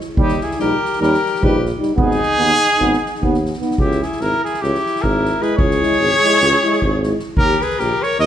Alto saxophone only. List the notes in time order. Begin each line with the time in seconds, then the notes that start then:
0.18 D#4
0.41 E4
0.60 G4
1.02 G4
1.44 G4
1.95 D#4
3.80 E4
4.04 E4
4.21 E4
4.44 E4
4.64 E4
5.07 E4
5.42 G#4
5.58 G#4
7.38 G4
7.62 G#4
7.79 G4
8.04 A#4
8.19 A#4